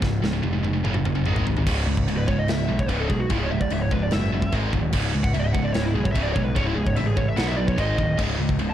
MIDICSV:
0, 0, Header, 1, 5, 480
1, 0, Start_track
1, 0, Key_signature, 4, "minor"
1, 0, Tempo, 408163
1, 36, Time_signature, 4, 2, 24, 8
1, 10276, End_track
2, 0, Start_track
2, 0, Title_t, "Lead electric guitar"
2, 0, Program_c, 0, 29
2, 2555, Note_on_c, 0, 71, 80
2, 2676, Note_off_c, 0, 71, 0
2, 2683, Note_on_c, 0, 73, 97
2, 2800, Note_off_c, 0, 73, 0
2, 2807, Note_on_c, 0, 75, 88
2, 2933, Note_off_c, 0, 75, 0
2, 2933, Note_on_c, 0, 76, 94
2, 3289, Note_off_c, 0, 76, 0
2, 3290, Note_on_c, 0, 73, 80
2, 3399, Note_off_c, 0, 73, 0
2, 3399, Note_on_c, 0, 71, 88
2, 3525, Note_off_c, 0, 71, 0
2, 3525, Note_on_c, 0, 69, 83
2, 3630, Note_off_c, 0, 69, 0
2, 3635, Note_on_c, 0, 68, 86
2, 3757, Note_off_c, 0, 68, 0
2, 3760, Note_on_c, 0, 66, 74
2, 3880, Note_off_c, 0, 66, 0
2, 3904, Note_on_c, 0, 64, 69
2, 3973, Note_off_c, 0, 64, 0
2, 3979, Note_on_c, 0, 68, 77
2, 4038, Note_on_c, 0, 73, 76
2, 4050, Note_off_c, 0, 68, 0
2, 4120, Note_off_c, 0, 73, 0
2, 4130, Note_on_c, 0, 76, 104
2, 4243, Note_off_c, 0, 76, 0
2, 4247, Note_on_c, 0, 74, 85
2, 4363, Note_off_c, 0, 74, 0
2, 4382, Note_on_c, 0, 76, 110
2, 4490, Note_off_c, 0, 76, 0
2, 4495, Note_on_c, 0, 73, 81
2, 4607, Note_off_c, 0, 73, 0
2, 4615, Note_on_c, 0, 71, 93
2, 4727, Note_off_c, 0, 71, 0
2, 4734, Note_on_c, 0, 74, 83
2, 4847, Note_off_c, 0, 74, 0
2, 4847, Note_on_c, 0, 76, 84
2, 5327, Note_off_c, 0, 76, 0
2, 6158, Note_on_c, 0, 78, 81
2, 6275, Note_off_c, 0, 78, 0
2, 6275, Note_on_c, 0, 76, 98
2, 6343, Note_on_c, 0, 74, 89
2, 6358, Note_off_c, 0, 76, 0
2, 6430, Note_off_c, 0, 74, 0
2, 6430, Note_on_c, 0, 76, 97
2, 6500, Note_on_c, 0, 78, 123
2, 6515, Note_off_c, 0, 76, 0
2, 6629, Note_off_c, 0, 78, 0
2, 6630, Note_on_c, 0, 74, 83
2, 6735, Note_off_c, 0, 74, 0
2, 6740, Note_on_c, 0, 73, 76
2, 6848, Note_on_c, 0, 64, 61
2, 6868, Note_off_c, 0, 73, 0
2, 6982, Note_off_c, 0, 64, 0
2, 6982, Note_on_c, 0, 68, 96
2, 7096, Note_on_c, 0, 73, 77
2, 7109, Note_off_c, 0, 68, 0
2, 7191, Note_off_c, 0, 73, 0
2, 7196, Note_on_c, 0, 76, 109
2, 7324, Note_off_c, 0, 76, 0
2, 7324, Note_on_c, 0, 74, 85
2, 7438, Note_off_c, 0, 74, 0
2, 7443, Note_on_c, 0, 73, 110
2, 7568, Note_off_c, 0, 73, 0
2, 7572, Note_on_c, 0, 71, 80
2, 7708, Note_off_c, 0, 71, 0
2, 7708, Note_on_c, 0, 73, 89
2, 7827, Note_on_c, 0, 64, 65
2, 7832, Note_off_c, 0, 73, 0
2, 7944, Note_on_c, 0, 68, 87
2, 7951, Note_off_c, 0, 64, 0
2, 8069, Note_off_c, 0, 68, 0
2, 8075, Note_on_c, 0, 73, 75
2, 8184, Note_off_c, 0, 73, 0
2, 8184, Note_on_c, 0, 76, 104
2, 8304, Note_on_c, 0, 68, 67
2, 8309, Note_off_c, 0, 76, 0
2, 8427, Note_on_c, 0, 73, 91
2, 8429, Note_off_c, 0, 68, 0
2, 8564, Note_off_c, 0, 73, 0
2, 8564, Note_on_c, 0, 76, 92
2, 8665, Note_on_c, 0, 78, 104
2, 8679, Note_off_c, 0, 76, 0
2, 8789, Note_off_c, 0, 78, 0
2, 8790, Note_on_c, 0, 76, 81
2, 8899, Note_off_c, 0, 76, 0
2, 8903, Note_on_c, 0, 74, 97
2, 9024, Note_off_c, 0, 74, 0
2, 9029, Note_on_c, 0, 73, 87
2, 9151, Note_off_c, 0, 73, 0
2, 9167, Note_on_c, 0, 75, 86
2, 9609, Note_off_c, 0, 75, 0
2, 10230, Note_on_c, 0, 81, 97
2, 10276, Note_off_c, 0, 81, 0
2, 10276, End_track
3, 0, Start_track
3, 0, Title_t, "Distorted electric guitar"
3, 0, Program_c, 1, 30
3, 22, Note_on_c, 1, 37, 73
3, 25, Note_on_c, 1, 44, 73
3, 246, Note_off_c, 1, 37, 0
3, 247, Note_off_c, 1, 44, 0
3, 261, Note_on_c, 1, 44, 68
3, 266, Note_on_c, 1, 37, 64
3, 371, Note_off_c, 1, 44, 0
3, 377, Note_off_c, 1, 37, 0
3, 385, Note_on_c, 1, 44, 83
3, 391, Note_on_c, 1, 37, 71
3, 480, Note_off_c, 1, 37, 0
3, 485, Note_off_c, 1, 44, 0
3, 494, Note_on_c, 1, 37, 73
3, 499, Note_on_c, 1, 44, 83
3, 603, Note_off_c, 1, 44, 0
3, 610, Note_off_c, 1, 37, 0
3, 617, Note_on_c, 1, 44, 79
3, 624, Note_on_c, 1, 37, 62
3, 722, Note_off_c, 1, 44, 0
3, 725, Note_off_c, 1, 37, 0
3, 736, Note_on_c, 1, 44, 83
3, 739, Note_on_c, 1, 37, 68
3, 844, Note_off_c, 1, 44, 0
3, 845, Note_off_c, 1, 37, 0
3, 858, Note_on_c, 1, 44, 89
3, 859, Note_on_c, 1, 37, 64
3, 981, Note_off_c, 1, 37, 0
3, 984, Note_off_c, 1, 44, 0
3, 986, Note_on_c, 1, 42, 87
3, 989, Note_on_c, 1, 49, 88
3, 1001, Note_on_c, 1, 54, 91
3, 1089, Note_off_c, 1, 49, 0
3, 1095, Note_off_c, 1, 42, 0
3, 1103, Note_on_c, 1, 49, 78
3, 1106, Note_off_c, 1, 54, 0
3, 1109, Note_on_c, 1, 42, 65
3, 1222, Note_off_c, 1, 49, 0
3, 1224, Note_off_c, 1, 42, 0
3, 1236, Note_on_c, 1, 49, 76
3, 1238, Note_on_c, 1, 42, 69
3, 1344, Note_off_c, 1, 49, 0
3, 1352, Note_off_c, 1, 42, 0
3, 1358, Note_on_c, 1, 49, 70
3, 1366, Note_on_c, 1, 42, 61
3, 1476, Note_off_c, 1, 42, 0
3, 1480, Note_off_c, 1, 49, 0
3, 1481, Note_on_c, 1, 44, 84
3, 1489, Note_on_c, 1, 51, 91
3, 1497, Note_on_c, 1, 56, 92
3, 1701, Note_off_c, 1, 51, 0
3, 1705, Note_off_c, 1, 44, 0
3, 1715, Note_off_c, 1, 56, 0
3, 1715, Note_on_c, 1, 51, 88
3, 1719, Note_on_c, 1, 44, 73
3, 1829, Note_off_c, 1, 51, 0
3, 1836, Note_off_c, 1, 44, 0
3, 1843, Note_on_c, 1, 51, 82
3, 1850, Note_on_c, 1, 44, 68
3, 1952, Note_off_c, 1, 44, 0
3, 1957, Note_on_c, 1, 37, 86
3, 1961, Note_off_c, 1, 51, 0
3, 1966, Note_on_c, 1, 44, 91
3, 1968, Note_on_c, 1, 49, 86
3, 2178, Note_off_c, 1, 37, 0
3, 2182, Note_off_c, 1, 44, 0
3, 2191, Note_off_c, 1, 49, 0
3, 2192, Note_on_c, 1, 37, 69
3, 2196, Note_on_c, 1, 44, 71
3, 2414, Note_off_c, 1, 37, 0
3, 2416, Note_off_c, 1, 44, 0
3, 2445, Note_on_c, 1, 44, 97
3, 2446, Note_on_c, 1, 37, 75
3, 2661, Note_off_c, 1, 37, 0
3, 2661, Note_off_c, 1, 44, 0
3, 2679, Note_on_c, 1, 37, 72
3, 2685, Note_on_c, 1, 44, 87
3, 2898, Note_off_c, 1, 37, 0
3, 2901, Note_off_c, 1, 44, 0
3, 2928, Note_on_c, 1, 37, 69
3, 2928, Note_on_c, 1, 44, 80
3, 3143, Note_off_c, 1, 37, 0
3, 3143, Note_off_c, 1, 44, 0
3, 3159, Note_on_c, 1, 37, 80
3, 3161, Note_on_c, 1, 44, 81
3, 3379, Note_off_c, 1, 37, 0
3, 3379, Note_off_c, 1, 44, 0
3, 3396, Note_on_c, 1, 37, 94
3, 3405, Note_on_c, 1, 44, 93
3, 3415, Note_on_c, 1, 49, 93
3, 3623, Note_off_c, 1, 37, 0
3, 3631, Note_off_c, 1, 44, 0
3, 3636, Note_off_c, 1, 49, 0
3, 3637, Note_on_c, 1, 37, 75
3, 3646, Note_on_c, 1, 44, 86
3, 3858, Note_off_c, 1, 37, 0
3, 3862, Note_off_c, 1, 44, 0
3, 3880, Note_on_c, 1, 37, 89
3, 3897, Note_on_c, 1, 44, 99
3, 3899, Note_on_c, 1, 49, 99
3, 4109, Note_off_c, 1, 37, 0
3, 4118, Note_off_c, 1, 44, 0
3, 4118, Note_off_c, 1, 49, 0
3, 4126, Note_on_c, 1, 37, 68
3, 4136, Note_on_c, 1, 44, 85
3, 4342, Note_off_c, 1, 37, 0
3, 4347, Note_off_c, 1, 44, 0
3, 4363, Note_on_c, 1, 37, 83
3, 4368, Note_on_c, 1, 44, 87
3, 4581, Note_off_c, 1, 37, 0
3, 4583, Note_off_c, 1, 44, 0
3, 4600, Note_on_c, 1, 37, 73
3, 4606, Note_on_c, 1, 44, 84
3, 4819, Note_off_c, 1, 37, 0
3, 4822, Note_off_c, 1, 44, 0
3, 4845, Note_on_c, 1, 37, 70
3, 4847, Note_on_c, 1, 44, 81
3, 5062, Note_off_c, 1, 37, 0
3, 5063, Note_off_c, 1, 44, 0
3, 5091, Note_on_c, 1, 37, 74
3, 5098, Note_on_c, 1, 44, 89
3, 5305, Note_off_c, 1, 37, 0
3, 5308, Note_off_c, 1, 44, 0
3, 5321, Note_on_c, 1, 44, 90
3, 5330, Note_on_c, 1, 51, 87
3, 5336, Note_on_c, 1, 56, 105
3, 5550, Note_off_c, 1, 44, 0
3, 5554, Note_off_c, 1, 51, 0
3, 5557, Note_off_c, 1, 56, 0
3, 5572, Note_on_c, 1, 44, 75
3, 5575, Note_on_c, 1, 51, 86
3, 5785, Note_off_c, 1, 44, 0
3, 5787, Note_off_c, 1, 51, 0
3, 5802, Note_on_c, 1, 37, 93
3, 5813, Note_on_c, 1, 44, 95
3, 5822, Note_on_c, 1, 49, 90
3, 6030, Note_off_c, 1, 37, 0
3, 6035, Note_off_c, 1, 44, 0
3, 6040, Note_off_c, 1, 49, 0
3, 6043, Note_on_c, 1, 37, 82
3, 6049, Note_on_c, 1, 44, 77
3, 6260, Note_off_c, 1, 37, 0
3, 6263, Note_off_c, 1, 44, 0
3, 6281, Note_on_c, 1, 37, 91
3, 6288, Note_on_c, 1, 44, 94
3, 6499, Note_off_c, 1, 37, 0
3, 6503, Note_off_c, 1, 44, 0
3, 6511, Note_on_c, 1, 37, 72
3, 6516, Note_on_c, 1, 44, 90
3, 6734, Note_off_c, 1, 37, 0
3, 6737, Note_off_c, 1, 44, 0
3, 6758, Note_on_c, 1, 37, 74
3, 6762, Note_on_c, 1, 44, 78
3, 6977, Note_off_c, 1, 37, 0
3, 6979, Note_off_c, 1, 44, 0
3, 7000, Note_on_c, 1, 37, 79
3, 7004, Note_on_c, 1, 44, 78
3, 7218, Note_off_c, 1, 37, 0
3, 7220, Note_off_c, 1, 44, 0
3, 7232, Note_on_c, 1, 37, 85
3, 7237, Note_on_c, 1, 44, 105
3, 7250, Note_on_c, 1, 49, 99
3, 7463, Note_off_c, 1, 37, 0
3, 7466, Note_off_c, 1, 44, 0
3, 7472, Note_off_c, 1, 49, 0
3, 7477, Note_on_c, 1, 37, 80
3, 7483, Note_on_c, 1, 44, 90
3, 7692, Note_off_c, 1, 37, 0
3, 7699, Note_off_c, 1, 44, 0
3, 7706, Note_on_c, 1, 37, 87
3, 7715, Note_on_c, 1, 44, 96
3, 7724, Note_on_c, 1, 49, 104
3, 7940, Note_off_c, 1, 37, 0
3, 7944, Note_off_c, 1, 44, 0
3, 7949, Note_off_c, 1, 49, 0
3, 7955, Note_on_c, 1, 37, 76
3, 7960, Note_on_c, 1, 44, 78
3, 8174, Note_off_c, 1, 37, 0
3, 8177, Note_off_c, 1, 44, 0
3, 8199, Note_on_c, 1, 37, 83
3, 8202, Note_on_c, 1, 44, 93
3, 8416, Note_off_c, 1, 37, 0
3, 8418, Note_off_c, 1, 44, 0
3, 8431, Note_on_c, 1, 37, 75
3, 8439, Note_on_c, 1, 44, 86
3, 8652, Note_off_c, 1, 37, 0
3, 8656, Note_off_c, 1, 44, 0
3, 8659, Note_on_c, 1, 47, 77
3, 8668, Note_on_c, 1, 54, 91
3, 8676, Note_on_c, 1, 59, 97
3, 8893, Note_off_c, 1, 47, 0
3, 8900, Note_off_c, 1, 54, 0
3, 8904, Note_off_c, 1, 59, 0
3, 8907, Note_on_c, 1, 47, 80
3, 8915, Note_on_c, 1, 54, 90
3, 9129, Note_off_c, 1, 47, 0
3, 9134, Note_off_c, 1, 54, 0
3, 9144, Note_on_c, 1, 44, 84
3, 9158, Note_on_c, 1, 51, 94
3, 9161, Note_on_c, 1, 56, 104
3, 9377, Note_off_c, 1, 44, 0
3, 9378, Note_off_c, 1, 51, 0
3, 9385, Note_off_c, 1, 56, 0
3, 9389, Note_on_c, 1, 44, 78
3, 9393, Note_on_c, 1, 51, 92
3, 9609, Note_off_c, 1, 44, 0
3, 9611, Note_off_c, 1, 51, 0
3, 9613, Note_on_c, 1, 37, 88
3, 9625, Note_on_c, 1, 44, 81
3, 9634, Note_on_c, 1, 49, 100
3, 9839, Note_off_c, 1, 37, 0
3, 9844, Note_off_c, 1, 44, 0
3, 9853, Note_on_c, 1, 37, 76
3, 9858, Note_on_c, 1, 44, 84
3, 9861, Note_off_c, 1, 49, 0
3, 10081, Note_off_c, 1, 37, 0
3, 10083, Note_off_c, 1, 44, 0
3, 10101, Note_on_c, 1, 37, 78
3, 10106, Note_on_c, 1, 44, 87
3, 10276, Note_off_c, 1, 37, 0
3, 10276, Note_off_c, 1, 44, 0
3, 10276, End_track
4, 0, Start_track
4, 0, Title_t, "Picked electric bass"
4, 0, Program_c, 2, 34
4, 24, Note_on_c, 2, 25, 98
4, 248, Note_off_c, 2, 25, 0
4, 269, Note_on_c, 2, 25, 92
4, 491, Note_off_c, 2, 25, 0
4, 516, Note_on_c, 2, 29, 92
4, 955, Note_off_c, 2, 29, 0
4, 995, Note_on_c, 2, 30, 99
4, 1216, Note_off_c, 2, 30, 0
4, 1242, Note_on_c, 2, 30, 82
4, 1460, Note_off_c, 2, 30, 0
4, 1492, Note_on_c, 2, 32, 83
4, 1924, Note_off_c, 2, 32, 0
4, 1963, Note_on_c, 2, 25, 86
4, 2186, Note_off_c, 2, 25, 0
4, 2202, Note_on_c, 2, 37, 94
4, 2426, Note_off_c, 2, 37, 0
4, 2446, Note_on_c, 2, 25, 93
4, 2668, Note_off_c, 2, 25, 0
4, 2682, Note_on_c, 2, 25, 82
4, 2906, Note_off_c, 2, 25, 0
4, 2935, Note_on_c, 2, 25, 94
4, 3153, Note_off_c, 2, 25, 0
4, 3164, Note_on_c, 2, 35, 86
4, 3387, Note_off_c, 2, 35, 0
4, 3401, Note_on_c, 2, 25, 89
4, 3625, Note_off_c, 2, 25, 0
4, 3646, Note_on_c, 2, 35, 95
4, 3868, Note_off_c, 2, 35, 0
4, 3882, Note_on_c, 2, 25, 94
4, 4107, Note_off_c, 2, 25, 0
4, 4143, Note_on_c, 2, 25, 89
4, 4358, Note_off_c, 2, 25, 0
4, 4378, Note_on_c, 2, 25, 91
4, 4817, Note_off_c, 2, 25, 0
4, 4863, Note_on_c, 2, 30, 100
4, 5300, Note_off_c, 2, 30, 0
4, 5322, Note_on_c, 2, 32, 93
4, 5546, Note_off_c, 2, 32, 0
4, 5562, Note_on_c, 2, 26, 88
4, 5786, Note_off_c, 2, 26, 0
4, 5799, Note_on_c, 2, 25, 96
4, 6025, Note_off_c, 2, 25, 0
4, 6054, Note_on_c, 2, 37, 99
4, 6273, Note_off_c, 2, 37, 0
4, 6291, Note_on_c, 2, 25, 85
4, 6511, Note_off_c, 2, 25, 0
4, 6520, Note_on_c, 2, 25, 84
4, 6745, Note_off_c, 2, 25, 0
4, 6763, Note_on_c, 2, 25, 96
4, 6986, Note_off_c, 2, 25, 0
4, 7002, Note_on_c, 2, 35, 95
4, 7225, Note_off_c, 2, 35, 0
4, 7239, Note_on_c, 2, 25, 93
4, 7463, Note_off_c, 2, 25, 0
4, 7480, Note_on_c, 2, 35, 92
4, 7704, Note_off_c, 2, 35, 0
4, 7716, Note_on_c, 2, 25, 85
4, 7941, Note_off_c, 2, 25, 0
4, 7961, Note_on_c, 2, 25, 91
4, 8184, Note_off_c, 2, 25, 0
4, 8198, Note_on_c, 2, 33, 95
4, 8644, Note_off_c, 2, 33, 0
4, 8676, Note_on_c, 2, 35, 101
4, 9122, Note_off_c, 2, 35, 0
4, 9151, Note_on_c, 2, 32, 87
4, 9377, Note_off_c, 2, 32, 0
4, 9394, Note_on_c, 2, 26, 85
4, 9618, Note_off_c, 2, 26, 0
4, 9629, Note_on_c, 2, 25, 85
4, 9855, Note_off_c, 2, 25, 0
4, 9864, Note_on_c, 2, 37, 91
4, 10092, Note_off_c, 2, 37, 0
4, 10101, Note_on_c, 2, 25, 95
4, 10276, Note_off_c, 2, 25, 0
4, 10276, End_track
5, 0, Start_track
5, 0, Title_t, "Drums"
5, 26, Note_on_c, 9, 36, 109
5, 37, Note_on_c, 9, 38, 56
5, 144, Note_off_c, 9, 36, 0
5, 155, Note_off_c, 9, 38, 0
5, 280, Note_on_c, 9, 38, 71
5, 398, Note_off_c, 9, 38, 0
5, 511, Note_on_c, 9, 48, 69
5, 628, Note_off_c, 9, 48, 0
5, 758, Note_on_c, 9, 48, 75
5, 876, Note_off_c, 9, 48, 0
5, 997, Note_on_c, 9, 47, 75
5, 1110, Note_off_c, 9, 47, 0
5, 1110, Note_on_c, 9, 47, 72
5, 1227, Note_off_c, 9, 47, 0
5, 1239, Note_on_c, 9, 45, 89
5, 1355, Note_off_c, 9, 45, 0
5, 1355, Note_on_c, 9, 45, 67
5, 1473, Note_off_c, 9, 45, 0
5, 1477, Note_on_c, 9, 45, 84
5, 1594, Note_off_c, 9, 45, 0
5, 1601, Note_on_c, 9, 43, 83
5, 1719, Note_off_c, 9, 43, 0
5, 1726, Note_on_c, 9, 43, 97
5, 1843, Note_off_c, 9, 43, 0
5, 1843, Note_on_c, 9, 43, 81
5, 1960, Note_off_c, 9, 43, 0
5, 1960, Note_on_c, 9, 36, 103
5, 1962, Note_on_c, 9, 49, 115
5, 1962, Note_on_c, 9, 52, 55
5, 2078, Note_off_c, 9, 36, 0
5, 2080, Note_off_c, 9, 49, 0
5, 2080, Note_off_c, 9, 52, 0
5, 2321, Note_on_c, 9, 36, 82
5, 2439, Note_off_c, 9, 36, 0
5, 2448, Note_on_c, 9, 52, 60
5, 2566, Note_off_c, 9, 52, 0
5, 2681, Note_on_c, 9, 36, 93
5, 2799, Note_off_c, 9, 36, 0
5, 2918, Note_on_c, 9, 52, 59
5, 2931, Note_on_c, 9, 38, 114
5, 3036, Note_off_c, 9, 52, 0
5, 3049, Note_off_c, 9, 38, 0
5, 3283, Note_on_c, 9, 36, 86
5, 3396, Note_on_c, 9, 52, 67
5, 3400, Note_off_c, 9, 36, 0
5, 3400, Note_on_c, 9, 36, 94
5, 3513, Note_off_c, 9, 52, 0
5, 3518, Note_off_c, 9, 36, 0
5, 3643, Note_on_c, 9, 36, 89
5, 3761, Note_off_c, 9, 36, 0
5, 3877, Note_on_c, 9, 52, 63
5, 3882, Note_on_c, 9, 36, 111
5, 3995, Note_off_c, 9, 52, 0
5, 4000, Note_off_c, 9, 36, 0
5, 4243, Note_on_c, 9, 36, 77
5, 4355, Note_on_c, 9, 52, 63
5, 4360, Note_off_c, 9, 36, 0
5, 4473, Note_off_c, 9, 52, 0
5, 4601, Note_on_c, 9, 36, 90
5, 4719, Note_off_c, 9, 36, 0
5, 4831, Note_on_c, 9, 52, 62
5, 4844, Note_on_c, 9, 38, 113
5, 4949, Note_off_c, 9, 52, 0
5, 4962, Note_off_c, 9, 38, 0
5, 5201, Note_on_c, 9, 36, 79
5, 5319, Note_off_c, 9, 36, 0
5, 5320, Note_on_c, 9, 52, 65
5, 5323, Note_on_c, 9, 36, 97
5, 5438, Note_off_c, 9, 52, 0
5, 5441, Note_off_c, 9, 36, 0
5, 5563, Note_on_c, 9, 36, 85
5, 5680, Note_off_c, 9, 36, 0
5, 5793, Note_on_c, 9, 49, 101
5, 5793, Note_on_c, 9, 52, 56
5, 5802, Note_on_c, 9, 36, 104
5, 5910, Note_off_c, 9, 49, 0
5, 5910, Note_off_c, 9, 52, 0
5, 5920, Note_off_c, 9, 36, 0
5, 6163, Note_on_c, 9, 36, 82
5, 6281, Note_off_c, 9, 36, 0
5, 6283, Note_on_c, 9, 52, 57
5, 6400, Note_off_c, 9, 52, 0
5, 6522, Note_on_c, 9, 36, 92
5, 6639, Note_off_c, 9, 36, 0
5, 6754, Note_on_c, 9, 52, 63
5, 6766, Note_on_c, 9, 38, 112
5, 6871, Note_off_c, 9, 52, 0
5, 6884, Note_off_c, 9, 38, 0
5, 7119, Note_on_c, 9, 36, 85
5, 7234, Note_on_c, 9, 52, 62
5, 7237, Note_off_c, 9, 36, 0
5, 7241, Note_on_c, 9, 36, 92
5, 7352, Note_off_c, 9, 52, 0
5, 7358, Note_off_c, 9, 36, 0
5, 7478, Note_on_c, 9, 36, 88
5, 7596, Note_off_c, 9, 36, 0
5, 7718, Note_on_c, 9, 36, 109
5, 7718, Note_on_c, 9, 52, 57
5, 7835, Note_off_c, 9, 36, 0
5, 7836, Note_off_c, 9, 52, 0
5, 8073, Note_on_c, 9, 36, 78
5, 8189, Note_on_c, 9, 52, 70
5, 8191, Note_off_c, 9, 36, 0
5, 8306, Note_off_c, 9, 52, 0
5, 8432, Note_on_c, 9, 36, 90
5, 8549, Note_off_c, 9, 36, 0
5, 8670, Note_on_c, 9, 52, 65
5, 8683, Note_on_c, 9, 38, 109
5, 8787, Note_off_c, 9, 52, 0
5, 8800, Note_off_c, 9, 38, 0
5, 9033, Note_on_c, 9, 36, 81
5, 9150, Note_off_c, 9, 36, 0
5, 9152, Note_on_c, 9, 36, 91
5, 9155, Note_on_c, 9, 52, 67
5, 9269, Note_off_c, 9, 36, 0
5, 9273, Note_off_c, 9, 52, 0
5, 9390, Note_on_c, 9, 36, 86
5, 9507, Note_off_c, 9, 36, 0
5, 9627, Note_on_c, 9, 52, 57
5, 9627, Note_on_c, 9, 57, 99
5, 9629, Note_on_c, 9, 36, 112
5, 9744, Note_off_c, 9, 52, 0
5, 9744, Note_off_c, 9, 57, 0
5, 9747, Note_off_c, 9, 36, 0
5, 9984, Note_on_c, 9, 36, 82
5, 10101, Note_on_c, 9, 52, 57
5, 10102, Note_off_c, 9, 36, 0
5, 10219, Note_off_c, 9, 52, 0
5, 10276, End_track
0, 0, End_of_file